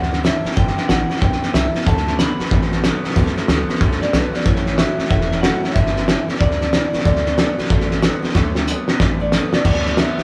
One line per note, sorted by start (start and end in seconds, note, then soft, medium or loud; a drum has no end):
0.00 0.29 D2 medium
0.00 0.11 G2 medium
0.00 0.11 D3 medium
0.00 0.12 E3 medium
0.00 0.12 G3 medium
0.00 0.11 B3 medium
0.00 0.10 E4 medium
0.00 0.23 F#5 medium
0.00 snare soft
0.11 0.23 G2 medium
0.11 0.24 D3 medium
0.11 0.23 E3 soft
0.11 0.24 G3 medium
0.11 0.24 B3 medium
0.11 0.24 E4 medium
0.11 snare soft
0.24 0.45 G2 medium
0.24 0.45 D3 medium
0.24 0.45 E3 medium
0.24 0.45 G3 medium
0.24 0.44 B3 medium
0.24 0.43 E4 medium
0.24 0.56 E5 medium
0.24 snare loud
0.24 hi-hat pedal medium
0.44 0.56 G2 medium
0.44 0.56 E3 soft
0.44 0.56 G3 soft
0.44 0.56 B3 medium
0.44 0.57 E4 medium
0.44 muted upright bass stroke medium
0.44 snare soft
0.51 snare soft
0.56 0.71 G1 medium
0.56 0.77 G2 medium
0.56 0.77 D3 medium
0.56 0.78 E3 medium
0.56 0.77 G3 medium
0.56 0.76 B3 medium
0.56 0.75 E4 medium
0.56 0.88 G5 loud
0.56 kick loud
0.56 snare soft
0.67 snare soft
0.77 0.88 G2 medium
0.77 0.88 D3 medium
0.77 0.89 E3 soft
0.77 0.89 G3 soft
0.77 0.89 B3 medium
0.77 0.89 E4 medium
0.77 muted upright bass stroke medium
0.77 snare soft
0.88 1.07 A1 medium
0.88 1.10 G2 medium
0.88 1.10 D3 medium
0.88 1.10 E3 medium
0.88 1.10 G3 medium
0.88 1.09 B3 medium
0.88 1.08 E4 medium
0.88 1.21 F#5 medium
0.88 snare loud
0.88 hi-hat pedal medium
1.09 1.21 G2 medium
1.09 1.20 E3 soft
1.09 1.21 G3 medium
1.09 1.22 B3 soft
1.09 1.22 E4 medium
1.09 muted upright bass stroke medium
1.09 snare soft
1.16 snare soft
1.21 1.39 B1 medium
1.21 1.40 G2 medium
1.21 1.41 D3 medium
1.21 1.42 E3 medium
1.21 1.42 G3 medium
1.21 1.42 B3 medium
1.21 1.41 E4 medium
1.21 1.53 G5 loud
1.21 kick loud
1.21 snare soft
1.32 snare soft
1.42 1.53 G2 medium
1.42 1.54 D3 medium
1.42 1.54 E3 soft
1.42 1.55 G3 medium
1.42 1.55 B3 medium
1.42 1.54 E4 medium
1.42 snare soft
1.53 1.72 C2 medium
1.53 1.75 G2 medium
1.53 1.75 D3 medium
1.53 1.75 E3 medium
1.53 1.75 G3 medium
1.53 1.74 B3 medium
1.53 1.73 E4 medium
1.53 1.86 E5 medium
1.53 snare loud
1.53 hi-hat pedal medium
1.74 1.86 G2 medium
1.74 1.86 E3 soft
1.74 1.87 G3 soft
1.74 1.87 B3 medium
1.74 1.87 E4 medium
1.74 muted upright bass stroke medium
1.74 snare soft
1.81 snare soft
1.86 2.24 D2 loud
1.86 2.07 D3 medium
1.86 2.07 F#3 medium
1.86 2.08 A3 medium
1.86 2.07 B3 medium
1.86 2.06 F#4 medium
1.86 2.17 A5 loud
1.86 kick loud
1.86 snare soft
1.97 snare soft
2.07 2.18 D3 medium
2.07 2.19 A3 soft
2.07 2.19 B3 medium
2.07 2.19 F#4 medium
2.07 snare soft
2.19 2.40 D3 medium
2.19 2.40 F#3 medium
2.19 2.40 A3 medium
2.19 2.39 B3 medium
2.19 2.38 F#4 medium
2.19 2.80 B5 medium
2.19 snare loud
2.19 hi-hat pedal medium
2.39 2.50 D3 medium
2.39 2.51 A3 soft
2.39 2.52 B3 medium
2.39 2.51 F#4 medium
2.39 muted upright bass stroke medium
2.39 snare soft
2.45 snare soft
2.51 2.88 A1 medium
2.51 2.70 D3 medium
2.51 2.72 F#3 medium
2.51 2.72 A3 medium
2.51 2.72 B3 medium
2.51 2.70 F#4 medium
2.51 kick loud
2.51 snare soft
2.62 snare soft
2.72 2.83 D3 medium
2.72 2.84 A3 medium
2.72 2.84 B3 medium
2.72 2.84 F#4 medium
2.72 snare soft
2.84 3.04 D3 medium
2.84 3.05 F#3 medium
2.84 3.05 A3 medium
2.84 3.05 B3 loud
2.84 3.03 F#4 loud
2.84 snare loud
2.84 hi-hat pedal medium
3.04 3.15 D3 medium
3.04 3.16 A3 medium
3.04 3.16 B3 medium
3.04 3.16 F#4 medium
3.04 muted upright bass stroke medium
3.04 snare soft
3.10 snare soft
3.16 3.31 D2 medium
3.16 3.37 D3 medium
3.16 3.37 F#3 medium
3.16 3.37 A3 medium
3.16 3.37 B3 loud
3.16 3.35 F#4 loud
3.16 kick loud
3.16 snare soft
3.26 snare soft
3.36 3.48 D3 medium
3.36 3.48 A3 medium
3.36 3.48 B3 medium
3.36 3.49 F#4 medium
3.36 muted upright bass stroke medium
3.36 snare soft
3.48 3.66 D2 medium
3.48 3.69 D3 medium
3.48 3.69 F#3 medium
3.48 3.70 A3 medium
3.48 3.69 B3 medium
3.48 3.68 F#4 medium
3.48 snare loud
3.48 hi-hat pedal medium
3.69 3.80 D3 medium
3.69 3.81 A3 soft
3.69 3.82 B3 medium
3.69 3.81 F#4 medium
3.69 snare soft
3.75 snare soft
3.81 3.98 C2 medium
3.81 4.00 D3 medium
3.81 4.02 F#3 medium
3.81 4.02 A3 medium
3.81 4.02 B3 medium
3.81 4.00 F#4 medium
3.81 kick loud
3.81 snare soft
3.91 snare soft
4.01 4.12 D3 medium
4.01 4.13 A3 soft
4.01 4.13 B3 medium
4.01 4.14 F#4 medium
4.01 4.14 D5 loud
4.01 snare soft
4.13 4.31 B1 medium
4.13 4.34 D3 medium
4.13 4.34 F#3 medium
4.13 4.34 A3 medium
4.13 4.33 B3 medium
4.13 4.32 F#4 medium
4.13 4.33 B4 medium
4.13 snare loud
4.13 hi-hat pedal medium
4.33 4.45 D3 medium
4.33 4.45 A3 soft
4.33 4.46 B3 soft
4.33 4.46 F#4 medium
4.33 4.45 D5 medium
4.33 muted upright bass stroke medium
4.33 snare soft
4.40 snare soft
4.46 4.83 A1 medium
4.46 4.66 A2 medium
4.46 4.65 E3 medium
4.46 4.67 F#3 medium
4.46 4.67 A3 medium
4.46 4.66 C#4 medium
4.46 4.64 E4 medium
4.46 4.76 C#5 loud
4.46 kick loud
4.46 snare soft
4.56 snare soft
4.66 4.77 A2 medium
4.66 4.78 E3 medium
4.66 4.78 A3 soft
4.66 4.78 C#4 soft
4.66 4.78 E4 medium
4.66 snare soft
4.78 4.99 A2 medium
4.78 4.99 F#3 medium
4.78 4.99 A3 medium
4.78 4.98 C#4 medium
4.78 4.97 E4 medium
4.78 5.08 E5 medium
4.78 snare loud
4.78 hi-hat pedal medium
4.98 5.09 A2 medium
4.98 5.10 F#3 medium
4.98 5.10 A3 soft
4.98 5.11 C#4 medium
4.98 5.11 E4 soft
4.98 muted upright bass stroke medium
4.98 snare soft
5.05 snare soft
5.09 5.48 E1 medium
5.09 5.29 A2 medium
5.09 5.29 E3 medium
5.09 5.31 F#3 medium
5.09 5.32 A3 medium
5.09 5.31 C#4 medium
5.09 5.30 E4 medium
5.09 5.40 E5 loud
5.09 kick loud
5.09 snare soft
5.21 snare soft
5.31 5.41 A2 medium
5.31 5.42 E3 medium
5.31 5.43 A3 soft
5.31 5.43 C#4 medium
5.31 5.43 E4 medium
5.31 snare soft
5.41 5.64 A2 medium
5.41 5.64 F#3 medium
5.41 5.64 A3 medium
5.41 5.64 C#4 medium
5.41 5.63 E4 medium
5.41 5.73 F#5 loud
5.41 snare loud
5.41 hi-hat pedal medium
5.63 5.74 A2 medium
5.63 5.75 F#3 medium
5.63 5.76 A3 soft
5.63 5.77 C#4 soft
5.63 5.76 E4 medium
5.63 muted upright bass stroke medium
5.63 snare soft
5.70 6.24 E5 loud
5.70 snare soft
5.76 6.13 G1 loud
5.76 5.96 G2 medium
5.76 5.97 D3 medium
5.76 5.97 E3 medium
5.76 5.97 G3 medium
5.76 5.96 B3 medium
5.76 5.95 E4 medium
5.76 kick loud
5.76 snare soft
5.86 snare soft
5.96 6.07 G2 medium
5.96 6.07 D3 medium
5.96 6.07 E3 soft
5.96 6.08 G3 soft
5.96 6.08 B3 medium
5.96 6.08 E4 medium
5.96 snare soft
6.08 6.29 G2 medium
6.08 6.29 D3 medium
6.08 6.29 E3 medium
6.08 6.29 G3 medium
6.08 6.28 B3 medium
6.08 6.27 E4 medium
6.08 snare loud
6.08 hi-hat pedal medium
6.28 6.39 G2 medium
6.28 6.39 E3 soft
6.28 6.40 G3 medium
6.28 6.41 B3 medium
6.28 6.41 E4 medium
6.28 muted upright bass stroke medium
6.28 snare soft
6.35 snare soft
6.39 6.78 D2 medium
6.39 6.59 G2 medium
6.39 6.59 D3 medium
6.39 6.61 E3 medium
6.39 6.61 G3 medium
6.39 6.60 B3 medium
6.39 6.59 E4 medium
6.39 7.03 D5 loud
6.39 kick loud
6.39 snare soft
6.51 snare soft
6.60 6.72 G2 medium
6.60 6.72 D3 medium
6.60 6.72 E3 soft
6.60 6.73 G3 medium
6.60 6.73 B3 medium
6.60 6.73 E4 medium
6.60 snare soft
6.72 6.93 G2 medium
6.72 6.94 D3 medium
6.72 6.94 E3 medium
6.72 6.94 G3 medium
6.72 6.93 B3 medium
6.72 6.92 E4 medium
6.72 snare loud
6.72 hi-hat pedal medium
6.93 7.05 G2 medium
6.93 7.06 E3 medium
6.93 7.06 G3 medium
6.93 7.06 B3 medium
6.93 7.05 E4 medium
6.93 muted upright bass stroke medium
6.93 snare soft
6.99 snare soft
7.04 7.42 D2 medium
7.04 7.26 D3 medium
7.04 7.26 F#3 medium
7.04 7.26 A3 medium
7.04 7.26 B3 medium
7.04 7.25 F#4 medium
7.04 9.20 D5 medium
7.04 kick loud
7.04 snare soft
7.16 snare soft
7.26 7.37 D3 medium
7.26 7.37 A3 soft
7.26 7.38 B3 soft
7.26 7.38 F#4 medium
7.26 snare soft
7.37 7.58 D3 medium
7.37 7.58 F#3 medium
7.37 7.59 A3 medium
7.37 7.58 B3 medium
7.37 7.57 F#4 medium
7.37 snare loud
7.37 hi-hat pedal medium
7.58 7.69 D3 medium
7.58 7.70 A3 medium
7.58 7.70 B3 medium
7.58 7.70 F#4 medium
7.58 muted upright bass stroke medium
7.58 snare soft
7.64 snare soft
7.70 8.07 A1 medium
7.70 7.89 D3 medium
7.70 7.91 F#3 medium
7.70 7.91 A3 medium
7.70 7.90 B3 medium
7.70 7.89 F#4 medium
7.70 kick loud
7.70 snare soft
7.80 snare soft
7.90 8.02 D3 medium
7.90 8.02 A3 medium
7.90 8.02 B3 medium
7.90 8.03 F#4 medium
7.90 snare soft
8.02 8.23 D3 medium
8.02 8.23 F#3 medium
8.02 8.23 A3 medium
8.02 8.23 B3 loud
8.02 8.21 F#4 loud
8.02 snare loud
8.02 hi-hat pedal medium
8.22 8.34 D3 medium
8.22 8.34 A3 medium
8.22 8.35 B3 medium
8.22 8.35 F#4 medium
8.22 muted upright bass stroke medium
8.22 snare soft
8.29 snare soft
8.34 8.72 D2 medium
8.34 8.55 D3 medium
8.34 8.56 F#3 medium
8.34 8.56 A3 loud
8.34 8.55 B3 loud
8.34 8.54 F#4 medium
8.34 kick loud
8.34 snare medium
8.55 8.66 D3 medium
8.55 8.67 A3 medium
8.55 8.67 B3 medium
8.55 8.67 F#4 medium
8.55 snare medium
8.67 8.88 D3 medium
8.67 8.88 F#3 loud
8.67 8.88 A3 medium
8.67 8.88 B3 medium
8.67 8.86 F#4 medium
8.67 hi-hat pedal medium
8.88 8.99 D3 medium
8.88 8.99 A3 soft
8.88 9.00 B3 soft
8.88 9.00 F#4 medium
8.88 muted upright bass stroke medium
8.88 snare medium
9.00 9.37 A1 medium
9.00 9.18 D3 medium
9.00 9.20 F#3 medium
9.00 9.21 A3 medium
9.00 9.20 B3 medium
9.00 9.19 F#4 medium
9.00 kick loud
9.00 snare medium
9.20 9.31 D3 medium
9.20 9.32 A3 soft
9.20 9.33 B3 medium
9.20 9.32 F#4 medium
9.20 9.33 D5 medium
9.32 9.53 D3 loud
9.32 9.53 F#3 loud
9.32 9.53 A3 loud
9.32 9.53 B3 loud
9.32 9.51 F#4 loud
9.32 9.54 B4 medium
9.32 snare medium
9.32 hi-hat pedal medium
9.52 9.63 D3 medium
9.52 9.65 A3 soft
9.52 9.65 B3 medium
9.52 9.65 F#4 medium
9.52 9.64 D5 medium
9.52 muted upright bass stroke medium
9.52 snare medium
9.65 10.02 D2 medium
9.65 9.85 D3 medium
9.65 9.85 F#3 medium
9.65 9.86 A3 medium
9.65 9.85 B3 medium
9.65 9.83 F#4 medium
9.65 9.97 D5 medium
9.65 kick loud
9.65 snare soft
9.65 crash loud
9.75 snare soft
9.85 9.96 D3 medium
9.85 9.97 A3 soft
9.85 9.97 B3 medium
9.85 9.97 F#4 medium
9.85 snare soft
9.97 10.17 D3 medium
9.97 10.18 F#3 medium
9.97 10.18 A3 medium
9.97 10.18 B3 medium
9.97 10.16 F#4 medium
9.97 10.23 E5 medium
9.97 snare loud
9.97 hi-hat pedal medium
10.17 10.23 D3 medium
10.17 10.23 A3 soft
10.17 10.23 B3 medium
10.17 10.23 F#4 medium
10.17 muted upright bass stroke medium
10.17 snare soft